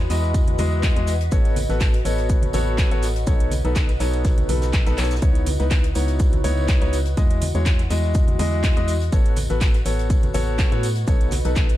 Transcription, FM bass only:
0.10 0.57 E2 medium
0.59 0.94 E2 loud
0.96 1.30 E2 loud
1.32 1.67 A1 loud
1.70 2.03 A1 loud
2.05 2.52 A1 medium
2.54 2.89 A1 medium
2.91 3.25 A1 loud
3.27 3.62 B1 loud
3.65 3.98 B1 loud
4.00 4.47 B1 medium
4.49 4.84 B1 medium
4.87 4.96 B1 loud
4.98 5.20 B1 medium
5.22 5.57 C#2 loud
5.60 5.93 C#2 loud
5.95 6.42 C#2 medium
6.44 6.79 C#2 loud
6.82 7.15 C#2 loud
7.17 7.52 E2 medium
7.55 7.88 E2 loud
7.90 8.37 E2 loud
8.39 8.74 E2 medium
8.77 9.10 E2 loud
9.12 9.47 A1 loud
9.50 9.83 A1 loud
9.86 10.32 A1 loud
10.34 10.69 A1 loud
10.72 11.05 A2 medium
11.08 11.42 B1 loud
11.45 11.77 B1 loud

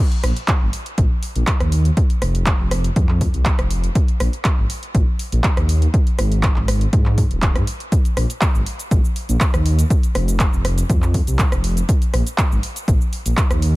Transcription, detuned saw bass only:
0.24 0.32 A#1 loud
0.61 0.69 G#1 medium
0.98 1.06 A#1 medium
1.36 1.43 A#1 loud
1.60 1.90 D#2 loud
2.22 2.52 F1 medium
2.60 2.90 F1 loud
2.96 3.27 F2 medium
3.34 3.50 C2 loud
3.59 3.89 F1 medium
4.20 4.29 A#1 loud
4.58 4.66 G#1 medium
4.95 5.03 A#1 medium
5.32 5.40 A#1 loud
5.57 5.87 D#2 loud
6.19 6.49 G#1 medium
6.56 6.86 G#1 loud
6.93 7.23 G#2 medium
7.31 7.57 D#1 loud
7.56 7.63 G#2 loud
8.17 8.25 A#1 loud
8.55 8.62 G#1 medium
8.91 9.00 A#1 loud
9.29 9.37 A#1 loud
9.54 9.84 D#2 loud
10.15 10.46 F1 medium
10.53 10.83 F1 loud
10.90 11.20 F2 medium
11.27 11.43 C2 loud
11.52 11.82 F1 medium
12.14 12.22 A#1 loud
12.51 12.59 G#1 medium
12.88 12.96 A#1 loud
13.26 13.33 A#1 loud
13.51 13.76 D#2 loud

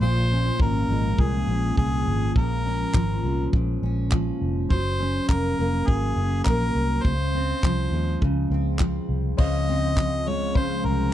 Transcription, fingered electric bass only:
0.01 0.49 A#1 medium
0.59 0.84 G#1 medium
0.88 1.13 G#1 medium
1.19 1.43 C2 medium
1.47 1.72 A#1 medium
1.77 2.07 C2 medium
2.06 2.30 G#1 medium
2.36 2.84 A#1 medium
2.94 3.18 G#1 medium
3.23 3.47 C2 medium
3.53 3.77 A#1 medium
3.82 4.30 A#1 medium
4.41 4.65 F1 medium
4.70 5.18 F#1 medium
5.29 5.53 F1 medium
5.59 5.83 F1 medium
5.88 6.11 G#1 medium
6.16 6.40 F#1 medium
6.46 6.70 A#1 medium
6.75 6.99 C2 medium
7.05 7.52 C#2 medium
7.63 7.87 C2 medium
7.91 8.15 D#2 medium
8.22 8.46 C#2 medium
8.50 8.98 C#2 medium
9.09 9.33 C2 medium
9.39 10.81 C#2 medium
10.85 11.08 C2 medium

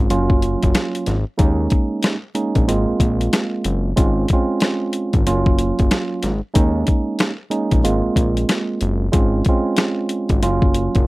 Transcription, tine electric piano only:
0.00 0.12 G#3 medium
0.00 0.12 C4 medium
0.10 1.16 F#3 loud
0.10 1.16 A#3 medium
0.10 1.16 C#4 medium
0.10 1.16 F4 loud
1.38 2.15 G#3 loud
1.38 2.15 A#3 medium
1.38 2.15 C#4 loud
1.38 2.15 D#4 loud
2.35 2.66 G#3 loud
2.35 2.67 A#3 medium
2.35 2.68 C#4 medium
2.35 2.68 D#4 loud
2.68 3.89 G#3 loud
2.68 3.89 A#3 medium
2.68 3.89 C4 medium
2.68 3.89 F4 loud
3.96 4.27 G#3 loud
3.96 4.27 C4 medium
3.96 4.27 C#4 medium
3.96 4.27 F4 loud
4.33 5.28 G#3 loud
4.33 5.28 C4 medium
4.33 5.26 C#4 medium
4.33 5.26 F4 loud
5.26 6.32 F#3 medium
5.26 6.32 A#3 medium
5.26 6.32 C#4 medium
5.26 6.32 F4 loud
6.54 7.31 G#3 loud
6.54 7.31 A#3 medium
6.54 7.31 C#4 loud
6.54 7.31 D#4 loud
7.51 7.83 G#3 loud
7.51 7.83 A#3 medium
7.51 7.84 C#4 medium
7.51 7.84 D#4 loud
7.84 9.05 G#3 loud
7.84 9.05 A#3 medium
7.84 9.05 C4 medium
7.84 9.06 F4 loud
9.12 9.43 G#3 loud
9.12 9.43 C4 medium
9.12 9.43 C#4 medium
9.12 9.43 F4 loud
9.49 10.44 G#3 loud
9.49 10.44 C4 medium
9.49 10.42 C#4 medium
9.49 10.42 F4 loud
10.42 11.07 F#3 medium
10.42 11.07 A#3 medium
10.42 11.07 C#4 medium
10.42 11.07 F4 loud

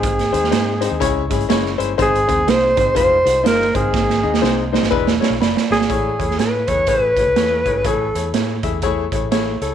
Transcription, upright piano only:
0.00 0.21 G#3 medium
0.00 0.21 C4 medium
0.00 0.21 D#4 medium
0.00 0.21 C5 medium
0.32 0.45 G#3 medium
0.32 0.46 C4 medium
0.32 0.45 D#4 medium
0.32 0.45 C5 medium
0.51 0.71 G#3 medium
0.51 0.71 C4 medium
0.51 0.71 D#4 medium
0.51 0.71 C5 medium
0.80 0.94 G#3 medium
0.80 0.94 C4 medium
0.80 0.94 D#4 medium
0.80 0.94 C5 medium
1.00 1.20 G#3 loud
1.00 1.20 C#4 loud
1.00 1.20 E4 loud
1.00 1.21 C#5 loud
1.30 1.43 G#3 medium
1.30 1.43 C#4 medium
1.30 1.43 E4 medium
1.30 1.43 G#4 medium
1.49 1.69 G#3 loud
1.49 1.69 C#4 loud
1.49 1.69 E4 medium
1.49 1.69 C#5 loud
1.78 1.91 G#3 medium
1.78 1.91 C#4 medium
1.78 1.91 E4 medium
1.78 1.91 C5 loud
1.98 2.18 G#3 loud
1.98 2.18 C4 medium
1.98 2.18 D#4 medium
1.98 2.18 C5 loud
2.28 2.41 G#3 medium
2.28 2.41 C4 medium
2.28 2.41 D#4 medium
2.28 2.41 C5 medium
2.47 2.67 G#3 medium
2.47 2.67 C4 medium
2.47 2.67 D#4 medium
2.47 2.67 C5 medium
2.77 2.90 G#3 medium
2.77 2.89 C4 medium
2.77 2.89 D#4 medium
2.77 2.90 C5 medium
2.95 3.15 G#3 loud
2.95 3.15 D#4 medium
2.95 3.15 F4 medium
2.95 3.15 C5 loud
3.25 3.38 G#3 medium
3.25 3.38 D#4 medium
3.25 3.38 F4 medium
3.25 3.38 C5 medium
3.43 3.64 G#3 medium
3.43 3.64 D#4 medium
3.43 3.64 F4 medium
3.43 3.64 C5 medium
3.74 4.12 G#3 medium
3.74 4.12 C4 medium
3.74 4.12 D#4 medium
3.74 4.12 C5 medium
4.23 4.36 G#3 medium
4.23 4.36 C4 medium
4.23 4.36 D#4 medium
4.23 4.36 D#5 medium
4.41 4.62 G#3 medium
4.41 4.62 C4 medium
4.41 4.62 D#4 medium
4.41 4.62 C5 loud
4.72 4.85 G#3 medium
4.72 4.85 C4 medium
4.72 4.85 D#4 medium
4.72 4.85 C5 medium
4.90 5.10 G#3 loud
4.90 5.10 D4 loud
4.90 5.11 E4 loud
4.90 5.11 B4 loud
5.20 5.33 G#3 medium
5.20 5.33 D4 medium
5.20 5.33 E4 medium
5.20 5.33 C#5 medium
5.41 5.69 D5 medium
5.41 5.69 B5 medium
5.71 6.17 F#4 medium
5.71 6.17 D5 medium
5.89 6.09 A3 medium
5.89 6.09 E4 medium
5.89 6.09 G#4 medium
5.89 6.09 C#5 loud
6.19 6.31 A3 medium
6.19 6.32 E4 medium
6.19 6.31 G#4 medium
6.19 6.32 C#5 medium
6.38 6.58 A3 medium
6.38 6.58 E4 medium
6.38 6.58 G#4 medium
6.38 6.58 C#5 medium
6.69 6.81 A3 medium
6.69 6.81 E4 medium
6.69 6.81 G#4 medium
6.69 6.81 B4 medium
6.87 7.07 A3 medium
6.87 7.07 E4 medium
6.87 7.07 G#4 medium
6.87 7.07 B4 loud
7.18 7.30 A3 medium
7.18 7.30 E4 medium
7.18 7.30 G#4 medium
7.18 7.30 C#5 medium
7.37 7.56 A3 medium
7.37 7.56 E4 medium
7.37 7.56 G#4 medium
7.37 7.56 C#5 medium
7.66 7.79 A3 medium
7.66 7.79 E4 medium
7.66 7.79 G#4 medium
7.66 7.79 C#5 medium
7.85 8.04 A3 loud
7.85 8.05 E4 medium
7.85 8.05 G#4 medium
7.85 8.05 C#5 loud
8.15 8.27 A3 medium
8.15 8.27 E4 medium
8.15 8.28 G#4 medium
8.15 8.28 C#5 medium
8.34 8.54 A3 medium
8.34 8.53 E4 medium
8.34 8.53 G#4 medium
8.34 8.53 C#5 medium
8.63 8.76 A3 medium
8.63 8.76 E4 medium
8.63 8.76 G#4 medium
8.63 8.76 E5 medium
8.83 9.03 A3 loud
8.83 9.03 E4 loud
8.83 9.03 G#4 loud
8.83 9.03 C#5 loud
9.12 9.25 A3 medium
9.12 9.25 E4 medium
9.12 9.25 G#4 medium
9.12 9.25 C#5 medium
9.31 9.51 A3 loud
9.31 9.51 E4 medium
9.31 9.51 G#4 medium
9.31 9.51 C#5 loud
9.62 9.74 A3 medium
9.62 9.74 E4 medium
9.62 9.74 G#4 medium
9.62 9.74 C#5 medium

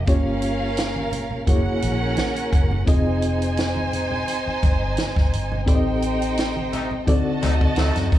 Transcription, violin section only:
0.08 1.45 C#4 medium
0.08 1.45 A#4 medium
0.08 1.45 F5 loud
1.48 2.85 C#4 medium
1.48 2.85 A#4 medium
1.48 2.85 F#5 loud
2.88 5.64 D#4 medium
2.88 5.64 C5 medium
2.88 5.64 G#5 loud
5.67 7.05 D#4 medium
5.67 7.05 C5 medium
5.67 7.05 G5 medium
7.07 8.19 F#4 medium
7.07 8.19 D#5 medium
7.07 8.19 A5 medium

